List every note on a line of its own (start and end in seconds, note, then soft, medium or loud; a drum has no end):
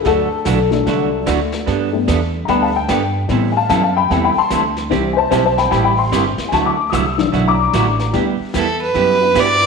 0.02 0.44 D2 medium
0.02 0.27 D3 medium
0.02 0.27 F#3 medium
0.02 0.27 A3 medium
0.02 0.27 D4 medium
0.02 0.27 F#4 medium
0.02 0.05 G#4 medium
0.02 brush sweep medium
0.02 kick soft
0.02 snare medium
0.07 1.24 A4 loud
0.45 0.85 B1 medium
0.45 0.57 D3 medium
0.45 0.57 F#3 medium
0.45 0.57 A3 medium
0.45 0.57 D4 medium
0.45 0.58 F#4 medium
0.45 kick soft
0.45 snare medium
0.45 hi-hat pedal medium
0.71 1.63 F#3 medium
0.71 1.63 A3 medium
0.71 1.64 D4 medium
0.71 snare soft
0.86 1.26 C2 medium
0.86 1.08 D3 medium
0.86 1.08 F#3 medium
0.86 1.09 A3 medium
0.86 1.09 D4 medium
0.86 1.09 F#4 medium
0.86 brush sweep soft
0.86 kick soft
0.86 snare soft
1.26 1.66 D2 medium
1.26 1.38 D3 medium
1.26 1.38 F#3 medium
1.26 1.38 A3 medium
1.26 1.38 D4 medium
1.26 1.39 F#4 medium
1.26 kick soft
1.26 snare medium
1.26 hi-hat pedal medium
1.52 snare soft
1.66 2.06 G2 medium
1.66 1.88 G3 medium
1.66 1.89 B3 medium
1.66 1.89 D4 medium
1.66 1.89 A4 medium
1.66 brush sweep medium
1.66 kick soft
1.66 snare soft
1.92 2.16 G3 medium
1.92 2.17 A3 medium
1.92 2.17 B3 medium
2.08 2.47 E2 medium
2.08 2.19 G3 medium
2.08 2.19 B3 medium
2.08 2.19 D4 medium
2.08 2.20 A4 medium
2.08 kick soft
2.08 snare medium
2.08 hi-hat pedal medium
2.45 2.88 D2 medium
2.45 2.70 G3 medium
2.45 2.72 G3 soft
2.45 2.72 A3 soft
2.45 2.70 B3 medium
2.45 2.72 B3 medium
2.45 2.70 D4 medium
2.45 2.61 G5 medium
2.45 2.48 A#5 medium
2.45 brush sweep soft
2.45 kick soft
2.45 snare soft
2.49 2.70 A4 medium
2.49 2.62 B5 medium
2.62 2.74 F5 medium
2.62 2.75 A5 medium
2.76 3.15 G5 loud
2.89 3.28 G2 medium
2.89 3.00 G3 medium
2.89 3.00 B3 medium
2.89 3.01 D4 medium
2.89 3.01 A4 medium
2.89 kick soft
2.89 snare medium
2.89 hi-hat pedal medium
3.28 3.68 A2 medium
3.28 3.91 C3 medium
3.28 3.51 E3 medium
3.28 3.92 G3 medium
3.28 3.52 G3 medium
3.28 3.92 B3 medium
3.28 3.52 C4 medium
3.28 3.52 E4 medium
3.28 3.52 A4 medium
3.28 brush sweep medium
3.28 kick soft
3.28 snare soft
3.52 3.56 G#5 medium
3.56 3.68 F5 medium
3.56 3.68 A5 loud
3.69 4.09 F#2 medium
3.69 3.81 E3 medium
3.69 3.81 G3 medium
3.69 3.81 C4 medium
3.69 3.81 E4 medium
3.69 3.82 A4 medium
3.69 3.81 F5 medium
3.69 3.82 A5 medium
3.69 kick soft
3.69 snare medium
3.69 hi-hat pedal medium
3.82 3.95 F5 medium
3.82 3.96 A5 medium
3.96 4.09 G5 medium
3.96 4.10 B5 loud
4.10 4.34 E2 medium
4.10 4.34 C3 soft
4.10 4.32 E3 medium
4.10 4.32 G3 medium
4.10 4.34 G3 soft
4.10 4.34 B3 medium
4.10 4.32 C4 medium
4.10 4.33 E4 medium
4.10 4.33 A4 medium
4.10 4.23 G5 medium
4.10 4.23 B5 medium
4.10 brush sweep soft
4.10 kick soft
4.10 snare soft
4.24 4.36 G5 medium
4.24 4.37 B5 medium
4.36 4.58 A5 medium
4.36 4.59 C6 loud
4.36 muted upright bass stroke soft
4.50 4.90 D2 loud
4.50 4.62 E3 medium
4.50 4.62 G3 medium
4.50 4.62 C4 medium
4.50 4.62 E4 medium
4.50 4.62 A4 medium
4.50 kick soft
4.50 snare medium
4.50 hi-hat pedal medium
4.77 snare soft
4.90 5.30 C2 medium
4.90 5.12 C3 medium
4.90 6.48 E3 medium
4.90 6.48 G3 medium
4.90 5.12 G3 medium
4.90 6.48 C4 medium
4.90 5.12 C4 medium
4.90 5.13 E4 medium
4.90 5.13 G4 medium
4.90 brush sweep medium
4.90 kick soft
4.90 snare soft
5.13 5.29 C5 medium
5.13 5.17 G#5 medium
5.18 5.30 A5 loud
5.31 5.71 B1 medium
5.31 5.42 C3 medium
5.31 5.43 G3 medium
5.31 5.43 C4 medium
5.31 5.43 E4 medium
5.31 5.43 G4 medium
5.31 5.43 C5 medium
5.31 5.44 A5 medium
5.31 kick soft
5.31 snare medium
5.31 hi-hat pedal medium
5.45 5.57 C5 medium
5.45 5.58 A5 medium
5.58 5.69 G5 medium
5.58 5.70 B5 medium
5.58 snare soft
5.70 6.11 A1 medium
5.70 5.93 C3 medium
5.70 5.93 G3 medium
5.70 5.93 C4 medium
5.70 5.93 E4 medium
5.70 5.93 G4 medium
5.70 5.83 G5 medium
5.70 5.83 B5 loud
5.70 brush sweep soft
5.70 kick soft
5.70 snare soft
5.84 5.97 G5 medium
5.84 5.98 B5 medium
5.98 6.20 C6 medium
6.11 6.36 G1 loud
6.11 6.23 C3 medium
6.11 6.23 G3 medium
6.11 6.24 C4 medium
6.11 6.24 E4 medium
6.11 6.24 G4 medium
6.11 kick soft
6.11 snare medium
6.11 hi-hat pedal medium
6.38 muted upright bass stroke soft
6.38 snare soft
6.49 6.91 D2 medium
6.49 6.74 D3 medium
6.49 6.74 F#3 medium
6.49 6.52 G#5 medium
6.49 brush sweep soft
6.49 kick soft
6.49 snare soft
6.53 6.74 A3 medium
6.53 6.74 E4 medium
6.53 6.74 F#4 medium
6.53 6.66 A5 loud
6.62 6.67 C#6 medium
6.66 6.92 D6 medium
6.90 7.32 C2 medium
6.90 7.04 D3 medium
6.90 7.04 F#3 medium
6.90 7.04 A3 medium
6.90 7.04 E4 medium
6.90 7.04 F#4 medium
6.90 6.93 D#6 medium
6.90 kick soft
6.90 snare medium
6.90 hi-hat pedal medium
6.94 7.46 E6 loud
7.18 8.09 E3 medium
7.18 8.10 F#3 medium
7.18 8.10 D4 medium
7.18 snare soft
7.32 7.73 B1 medium
7.32 7.54 D3 medium
7.32 7.54 F#3 medium
7.32 7.55 A3 medium
7.32 7.55 E4 medium
7.32 7.55 F#4 medium
7.32 brush sweep soft
7.32 kick soft
7.32 snare soft
7.48 8.10 A#5 medium
7.48 8.13 D6 loud
7.73 8.13 A1 loud
7.73 7.85 D3 medium
7.73 7.85 F#3 medium
7.73 7.85 A3 medium
7.73 7.86 E4 medium
7.73 7.86 F#4 medium
7.73 kick soft
7.73 snare medium
7.73 hi-hat pedal medium
7.99 snare soft
8.13 8.38 D2 medium
8.13 8.37 G3 medium
8.13 8.35 G3 medium
8.13 8.37 B3 medium
8.13 8.36 B3 medium
8.13 8.37 D4 medium
8.13 8.37 E4 medium
8.13 8.36 E4 medium
8.13 8.37 G4 medium
8.13 8.36 G4 medium
8.13 brush sweep soft
8.13 kick soft
8.13 snare medium
8.40 muted upright bass stroke soft
8.54 8.94 E2 medium
8.54 8.66 G3 medium
8.54 8.66 B3 medium
8.54 8.66 E4 medium
8.54 8.67 G4 medium
8.54 8.80 A4 medium
8.54 kick soft
8.54 snare medium
8.54 hi-hat pedal medium
8.82 9.41 B4 medium
8.94 9.34 F#2 medium
8.94 9.16 G3 medium
8.94 9.17 B3 medium
8.94 9.17 E4 medium
8.94 9.17 G4 medium
8.94 brush sweep soft
8.94 kick soft
8.94 snare soft
9.20 9.66 G3 medium
9.20 9.66 B3 medium
9.20 9.66 D4 medium
9.20 9.66 E4 medium
9.20 9.66 F#4 medium
9.34 9.66 G2 medium
9.34 9.46 G3 medium
9.34 9.46 B3 medium
9.34 9.47 E4 medium
9.34 9.47 G4 medium
9.34 kick soft
9.34 snare medium
9.34 hi-hat pedal medium
9.39 9.66 D5 medium
9.61 snare soft